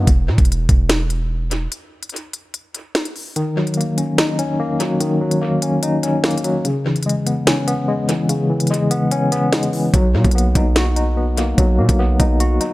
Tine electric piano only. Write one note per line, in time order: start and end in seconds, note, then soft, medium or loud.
3.36 4.39 D#3 loud
3.57 4.59 F#3 medium
3.77 4.58 A#3 medium
3.98 4.38 C#4 medium
4.18 5.21 D#4 loud
4.39 5.42 C#4 medium
4.59 5.40 A#3 medium
4.80 5.20 F#3 medium
5.01 6.03 D#3 loud
5.21 6.24 F#3 medium
5.42 6.22 A#3 medium
5.62 6.02 C#4 medium
5.83 6.65 D#4 loud
6.03 6.65 C#4 medium
6.24 6.65 A#3 medium
6.44 6.65 F#3 medium
6.65 7.68 C#3 medium
6.85 7.88 E3 medium
7.06 7.87 G#3 medium
7.27 7.66 B3 medium
7.47 8.50 C#4 loud
7.68 8.70 B3 medium
7.88 8.69 G#3 medium
8.09 8.48 E3 medium
8.29 9.32 C#3 loud
8.50 9.52 E3 medium
8.70 9.51 G#3 medium
8.91 9.31 B3 medium
9.12 9.94 C#4 loud
9.32 9.94 B3 medium
9.53 9.94 G#3 medium
9.73 9.94 E3 medium
9.94 10.96 F#3 loud
10.14 11.17 A#3 medium
10.35 11.16 B3 medium
10.55 10.95 D#4 medium
10.76 11.79 F#4 loud
10.96 11.99 D#4 medium
11.17 11.98 B3 medium
11.37 11.77 A#3 medium
11.58 12.61 F#3 medium
11.79 12.73 A#3 medium
11.99 12.73 B3 medium
12.20 12.60 D#4 medium
12.40 12.73 F#4 medium
12.61 12.73 D#4 medium